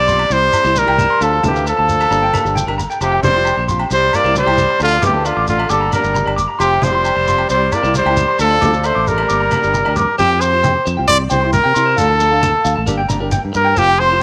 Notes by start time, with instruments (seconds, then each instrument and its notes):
Already playing: fingered electric bass B1, tenor saxophone G3, trumpet D5
0.07 nylon-string guitar F3 C4 F4 G4, clean electric guitar C6, muted conga, shekere
0.19 low agogo
0.30 fingered electric bass C2, nylon-string guitar G3 C4 E4 G4, tenor saxophone G3, trumpet C5, muted conga, shekere
0.53 nylon-string guitar C4 E4 G4, low agogo, shekere
0.64 fingered electric bass C2, nylon-string guitar C4 E4 G4, clean electric guitar C5, shekere
0.76 tenor saxophone G3, trumpet A#4, high conga, shekere
0.86 fingered electric bass C2, nylon-string guitar C4 E4 G4, clean electric guitar G5, low agogo
0.98 clean electric guitar C5, high conga, shekere
1.10 clean electric guitar C6
1.20 fingered electric bass D2, nylon-string guitar F3 A3 D4 A4, trumpet A4, clean electric guitar F5, muted conga, low agogo, shekere
1.24 tenor saxophone F3
1.33 clean electric guitar A4
1.42 fingered electric bass D2, nylon-string guitar F3 A3 D4 A4, clean electric guitar A5, muted conga, high conga, low conga, shekere
1.47 tenor saxophone E3, trumpet G4
1.54 nylon-string guitar A3 D4 A4, clean electric guitar F5, shekere
1.66 tenor saxophone F3, clean electric guitar A4, trumpet A4, low agogo, shekere
1.77 fingered electric bass D2, clean electric guitar A5
1.88 nylon-string guitar F3 A3 D4 A4, muted conga, shekere
2.00 clean electric guitar A4, low agogo, shekere
2.10 fingered electric bass G1, nylon-string guitar A#3 D4 G4, clean electric guitar A#5, muted conga, shekere
2.22 clean electric guitar G5
2.33 nylon-string guitar A#3 D4 G4, clean electric guitar A#4, high conga, low agogo, shekere
2.45 fingered electric bass G1, nylon-string guitar D4 G4, shekere
2.55 clean electric guitar G5, high conga, shekere
2.67 fingered electric bass G1, nylon-string guitar D4 G4, clean electric guitar A#4, low agogo
2.78 clean electric guitar A#5, shekere
2.90 clean electric guitar G5, shekere
3.01 fingered electric bass F1, tenor saxophone C3, nylon-string guitar F3 C4 F4 G4, trumpet G4, muted clean electric guitar stroke, muted conga, low agogo, shekere
3.12 clean electric guitar G5
3.23 fingered electric bass F1, nylon-string guitar F3 C4 F4 G4, tenor saxophone G3, trumpet C5, muted conga, high conga, shekere
3.34 nylon-string guitar C4 F4 G4, clean electric guitar C6
3.45 clean electric guitar G5, low agogo, shekere
3.57 fingered electric bass A#1, clean electric guitar C5
3.68 nylon-string guitar F3 C4 F4 G4, clean electric guitar C6, muted conga, shekere
3.79 clean electric guitar G5, low agogo
3.91 fingered electric bass C2, nylon-string guitar G3 C4 E4 G4, tenor saxophone G3, trumpet C5, muted conga, shekere
4.13 nylon-string guitar G3 C4 E4 G4, tenor saxophone A#3, trumpet D5, low agogo, shekere
4.24 fingered electric bass C2, nylon-string guitar C4 E4 G4, clean electric guitar C5, shekere
4.36 tenor saxophone G3, trumpet C5, high conga, shekere
4.47 fingered electric bass C2, nylon-string guitar C4 E4 G4, clean electric guitar G5, low agogo
4.57 clean electric guitar C5, high conga, shekere
4.69 muted clean electric guitar stroke
4.80 fingered electric bass D2, tenor saxophone D3, nylon-string guitar F3 A3 D4 A4, trumpet F4, muted clean electric guitar stroke, muted conga, low agogo, shekere
4.91 clean electric guitar D5
5.02 fingered electric bass D2, nylon-string guitar F3 A3 D4 A4, trumpet G4, clean electric guitar D6, muted conga, high conga, low conga, shekere
5.06 tenor saxophone E3
5.14 nylon-string guitar A3 D4 A4, clean electric guitar A5
5.25 tenor saxophone D3, trumpet F4, clean electric guitar D5, low agogo, shekere
5.37 fingered electric bass A1, clean electric guitar D6
5.47 tenor saxophone D3, nylon-string guitar F3 A3 D4 A4, trumpet F4, muted conga, shekere
5.59 clean electric guitar D5, low agogo
5.69 fingered electric bass G1, tenor saxophone D3, nylon-string guitar A#3 D4 G4, trumpet A4, clean electric guitar D6, muted conga, shekere
5.81 clean electric guitar A#5
5.91 nylon-string guitar A#3 D4 G4, trumpet A#4, clean electric guitar D5, high conga, low agogo, shekere
5.95 tenor saxophone G3
6.04 fingered electric bass G1, nylon-string guitar D4 G4, shekere
6.14 clean electric guitar A#5, high conga, shekere
6.25 fingered electric bass G1, nylon-string guitar D4 G4, clean electric guitar D5, low agogo
6.36 clean electric guitar D6, shekere
6.48 clean electric guitar A#5
6.59 fingered electric bass F1, nylon-string guitar F3 C4 F4 G4, trumpet G4, clean electric guitar C6, muted conga, low agogo, shekere
6.63 tenor saxophone C3
6.70 clean electric guitar G5
6.82 fingered electric bass F1, nylon-string guitar F3 C4 F4 G4, trumpet C5, muted conga, high conga, shekere
6.86 tenor saxophone G3
6.93 nylon-string guitar C4 F4 G4, clean electric guitar C6
7.04 clean electric guitar G5, low agogo, shekere
7.15 fingered electric bass F1, clean electric guitar C5
7.26 nylon-string guitar F3 C4 F4 G4, clean electric guitar C6, muted conga, shekere
7.38 clean electric guitar G5, low agogo
7.49 fingered electric bass C2, nylon-string guitar G3 C4 E4 G4, trumpet C5, muted conga, shekere
7.53 tenor saxophone G3
7.72 nylon-string guitar G3 C4 E4 G4, tenor saxophone A#3, trumpet D5, low agogo, shekere
7.83 fingered electric bass C2, nylon-string guitar C4 E4 G4, clean electric guitar C5, shekere
7.94 tenor saxophone G3, trumpet C5, high conga, shekere
8.06 fingered electric bass C#2, nylon-string guitar C4 E4 G4, clean electric guitar G5, low agogo
8.16 clean electric guitar C5, high conga, shekere
8.28 clean electric guitar C6
8.39 fingered electric bass D2, nylon-string guitar F3 A3 D4 A4, tenor saxophone F3, trumpet A4, muted clean electric guitar stroke, muted conga, low agogo, shekere
8.51 clean electric guitar D5
8.61 fingered electric bass D2, nylon-string guitar F3 A3 D4 A4, clean electric guitar D6, muted conga, high conga, low conga, shekere
8.73 nylon-string guitar D4, clean electric guitar A5, shekere
8.84 tenor saxophone A3, trumpet C5, clean electric guitar D5, low agogo, shekere
8.95 fingered electric bass A1, clean electric guitar D6
9.07 nylon-string guitar F3 A3 D4 A4, tenor saxophone G3, trumpet A#4, muted conga, shekere
9.18 clean electric guitar D5, low agogo
9.29 fingered electric bass G1, nylon-string guitar A#3 D4 G4, clean electric guitar D6, muted conga, shekere
9.40 clean electric guitar A#5
9.51 nylon-string guitar A#3 D4 G4, clean electric guitar D5, high conga, low agogo, shekere
9.63 fingered electric bass G1, nylon-string guitar D4 G4, shekere
9.74 muted clean electric guitar stroke, high conga, shekere
9.85 fingered electric bass D2, nylon-string guitar D4 G4, clean electric guitar D5, low agogo
9.96 trumpet A#4, clean electric guitar D6, low conga, shekere
10.18 fingered electric bass F2, nylon-string guitar F3 C4 F4 G4, trumpet G4, clean electric guitar C5, muted conga, shekere
10.31 clean electric guitar G5
10.41 nylon-string guitar F3 C4 F4 G4, trumpet C5, clean electric guitar C6, shekere
10.53 nylon-string guitar C4 F4 G4, clean electric guitar C5
10.63 clean electric guitar G5, muted conga, high conga, shekere
10.85 fingered electric bass F2, clean electric guitar C5, shekere
10.97 fingered electric bass C2, nylon-string guitar C4 F4 G4, clean electric guitar G5
11.08 fingered electric bass C2, nylon-string guitar C4 E4 G4, trumpet D5, clean electric guitar C6, muted conga, shekere
11.30 fingered electric bass C2, nylon-string guitar C4 E4 G4, trumpet C5, clean electric guitar G5, muted conga, high conga, shekere
11.41 nylon-string guitar E4 G4, clean electric guitar C6
11.53 trumpet A#4, high conga, shekere
11.64 fingered electric bass C3, clean electric guitar G5
11.74 fingered electric bass C3, nylon-string guitar C4 E4 G4, clean electric guitar C6, shekere
11.86 clean electric guitar C5
11.96 fingered electric bass D2, nylon-string guitar F3 A3 D4 A4, trumpet A4, clean electric guitar F5, muted conga, shekere
12.08 clean electric guitar A5
12.19 nylon-string guitar F3 A3 D4 A4, clean electric guitar A4, shekere
12.31 nylon-string guitar A3 D4 A4, clean electric guitar F5
12.42 clean electric guitar A5, muted conga, high conga, shekere
12.64 fingered electric bass D2, clean electric guitar F5, shekere
12.76 fingered electric bass A1, nylon-string guitar A3, clean electric guitar A5
12.86 fingered electric bass G1, nylon-string guitar A#3 D4 G4, clean electric guitar A#4, muted conga, shekere
12.98 clean electric guitar G5
13.09 fingered electric bass G1, nylon-string guitar A#3 D4 G4, clean electric guitar A#5, muted conga, high conga, shekere
13.20 nylon-string guitar D4 G4, clean electric guitar A#4
13.31 clean electric guitar G5, high conga, shekere
13.45 fingered electric bass G2
13.53 fingered electric bass G2, nylon-string guitar A#3 D4 G4, trumpet A#4, muted clean electric guitar stroke, shekere
13.65 clean electric guitar G5
13.75 fingered electric bass F1, nylon-string guitar F3 C4 F4 G4, trumpet G4, clean electric guitar C5, muted conga, shekere
13.87 clean electric guitar G5
13.98 nylon-string guitar F3 C4 F4 G4, trumpet C5, clean electric guitar C6
14.09 nylon-string guitar F4 G4, clean electric guitar C5
14.14 nylon-string guitar C4